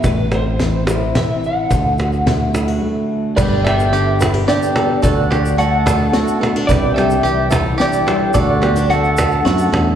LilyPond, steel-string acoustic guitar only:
\new Staff \with { instrumentName = "Steel-string acoustic guitar" } { \time 3/4 \key g \major \tempo 4 = 108 << { b8 c'4 e'4. | r8 fis'4 e'16 fis'4~ fis'16 | r8 b4 e'16 g'16 d'8 b8 | r8 d'4 fis'8 fis'8 b16 d'16 |
r8 g4 e'8 d'8 g8 | <a d' fis'>8 b16 d'8. fis'8 e'16 fis'16 d'8 | } \\ { a,4 e4 e4 | d4 a4 a4 | g,4 d4 d4 | d4 a4 a4 |
c4 e4 e4 | d4 a4 a4 | } >> }